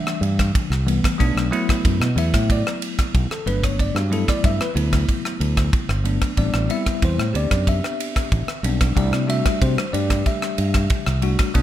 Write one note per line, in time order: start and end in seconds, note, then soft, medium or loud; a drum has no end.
0.00 0.67 E3 medium
0.00 0.68 G3 medium
0.00 0.68 A3 medium
0.00 0.68 D4 medium
0.00 0.21 E5 medium
0.07 cross-stick medium
0.21 0.50 G2 medium
0.21 ride medium
0.39 kick medium
0.39 cross-stick medium
0.39 ride medium
0.55 kick loud
0.55 ride medium
0.70 0.99 C2 medium
0.70 cross-stick medium
0.86 1.14 E3 medium
0.86 1.15 G3 medium
0.86 1.15 A3 medium
0.86 1.15 B3 medium
0.86 ride medium
1.04 kick medium
1.04 cross-stick medium
1.04 ride medium
1.18 1.34 B1 medium
1.18 1.47 F#3 medium
1.18 1.47 A3 medium
1.18 1.47 B3 medium
1.18 1.47 D4 loud
1.18 kick medium
1.18 ride medium
1.35 1.49 B1 medium
1.35 cross-stick medium
1.51 2.07 F#3 medium
1.51 2.07 A3 medium
1.51 2.07 B3 medium
1.51 2.08 E4 loud
1.51 ride soft
1.69 muted fingered electric bass stroke soft
1.69 kick medium
1.69 cross-stick medium
1.69 ride medium
1.85 1.99 F#2 medium
1.85 kick loud
1.85 ride medium
2.00 2.14 B2 medium
2.00 cross-stick medium
2.16 2.31 E2 medium
2.16 3.27 F#3 medium
2.16 3.27 A3 medium
2.16 3.28 B3 medium
2.16 3.28 E4 medium
2.16 2.49 E5 medium
2.16 ride medium
2.34 2.62 A2 medium
2.34 kick medium
2.34 cross-stick medium
2.34 ride medium
2.50 2.70 D5 medium
2.50 kick medium
2.50 ride medium
2.67 cross-stick medium
2.82 ride medium
2.99 kick medium
2.99 cross-stick medium
2.99 ride medium
3.14 3.29 B1 medium
3.14 kick loud
3.14 ride medium
3.31 3.46 A4 medium
3.31 cross-stick medium
3.46 3.89 G1 medium
3.46 4.02 F#3 medium
3.46 4.02 A3 medium
3.46 4.02 B3 medium
3.46 4.03 D4 medium
3.46 3.63 B4 medium
3.46 ride medium
3.63 3.79 C#5 medium
3.63 kick medium
3.63 cross-stick medium
3.63 ride medium
3.79 3.96 D5 medium
3.79 kick medium
3.79 ride medium
3.95 4.23 G2 medium
3.95 4.12 F#4 medium
3.95 cross-stick medium
4.10 4.66 F#3 medium
4.10 4.66 A3 medium
4.10 4.67 B3 medium
4.10 4.67 E4 medium
4.10 4.28 A4 medium
4.10 ride medium
4.28 4.44 D5 medium
4.28 kick medium
4.28 cross-stick medium
4.28 ride medium
4.44 4.58 G2 medium
4.44 4.60 E5 loud
4.44 kick loud
4.44 ride medium
4.59 4.70 B4 medium
4.59 muted fingered electric bass stroke soft
4.59 cross-stick medium
4.74 5.04 D2 medium
4.74 5.86 F#3 medium
4.74 5.86 A3 medium
4.74 5.86 B3 medium
4.74 5.87 E4 medium
4.74 ride medium
4.93 kick medium
4.93 cross-stick medium
4.93 ride medium
5.09 kick medium
5.09 ride soft
5.25 cross-stick medium
5.40 5.69 D2 medium
5.40 ride medium
5.57 kick medium
5.57 cross-stick medium
5.57 ride soft
5.73 kick loud
5.73 ride soft
5.89 6.17 G1 medium
5.89 cross-stick medium
6.04 6.32 F#3 medium
6.04 6.33 A3 medium
6.04 6.33 B3 medium
6.04 6.33 D4 medium
6.04 ride medium
6.22 kick medium
6.22 cross-stick medium
6.22 ride medium
6.37 6.52 A1 medium
6.37 6.65 G3 medium
6.37 6.65 B3 medium
6.37 6.65 C4 medium
6.37 6.66 D4 medium
6.37 6.69 D5 medium
6.37 kick medium
6.37 ride medium
6.54 6.68 A1 medium
6.54 cross-stick medium
6.69 7.25 G3 medium
6.69 7.25 B3 medium
6.69 7.25 C4 medium
6.69 7.26 E4 medium
6.69 7.02 E5 loud
6.69 ride medium
6.86 muted fingered electric bass stroke soft
6.86 kick medium
6.86 cross-stick medium
6.86 ride medium
7.02 7.17 E2 medium
7.02 7.35 C5 medium
7.02 kick loud
7.02 ride medium
7.18 7.33 A2 medium
7.18 cross-stick medium
7.33 7.49 D2 medium
7.33 8.45 B3 medium
7.33 8.45 C4 medium
7.33 8.45 D4 medium
7.33 8.45 G4 medium
7.33 7.67 D5 medium
7.33 ride medium
7.51 7.79 F#2 medium
7.51 kick medium
7.51 cross-stick medium
7.51 ride medium
7.67 8.61 E5 medium
7.67 kick medium
7.67 ride medium
7.84 cross-stick medium
8.00 ride medium
8.16 kick medium
8.16 cross-stick medium
8.16 ride medium
8.32 8.46 A1 medium
8.32 kick loud
8.32 ride medium
8.48 cross-stick medium
8.63 8.92 B1 medium
8.63 8.92 G3 medium
8.63 8.92 B3 medium
8.63 8.92 C4 medium
8.63 8.93 D4 medium
8.63 ride medium
8.81 kick medium
8.81 cross-stick medium
8.81 ride medium
8.95 9.11 C2 loud
8.95 9.24 G3 medium
8.95 9.24 A3 medium
8.95 9.24 D4 medium
8.95 9.24 E4 medium
8.95 9.29 D5 medium
8.95 kick medium
8.95 ride medium
9.12 9.41 C3 medium
9.12 cross-stick medium
9.27 9.83 G3 medium
9.27 9.84 A3 medium
9.27 9.84 D4 medium
9.27 9.84 F#4 medium
9.27 9.61 E5 loud
9.27 ride medium
9.46 kick medium
9.46 cross-stick medium
9.46 ride medium
9.62 9.76 C3 medium
9.62 9.93 C5 medium
9.62 kick loud
9.62 ride medium
9.77 muted fingered electric bass stroke soft
9.77 cross-stick medium
9.93 10.22 G2 medium
9.93 11.04 G3 medium
9.93 11.04 A3 medium
9.93 11.04 D4 medium
9.93 11.05 G4 medium
9.93 10.25 D5 medium
9.93 ride medium
10.10 kick medium
10.10 cross-stick medium
10.10 ride medium
10.26 11.19 E5 medium
10.26 kick medium
10.26 ride medium
10.42 cross-stick medium
10.58 10.87 G2 medium
10.58 ride medium
10.74 kick medium
10.74 cross-stick medium
10.74 ride medium
10.90 kick loud
10.90 ride medium
11.06 11.35 C2 medium
11.06 cross-stick medium
11.22 11.50 G3 medium
11.22 11.50 A3 medium
11.22 11.51 D4 medium
11.22 11.51 F#4 medium
11.22 ride medium
11.39 kick medium
11.39 cross-stick medium
11.39 ride medium
11.54 11.62 B1 medium
11.54 11.62 F#3 medium
11.54 11.62 A3 medium
11.54 11.62 B3 medium
11.54 11.62 D4 medium
11.54 kick medium
11.54 ride medium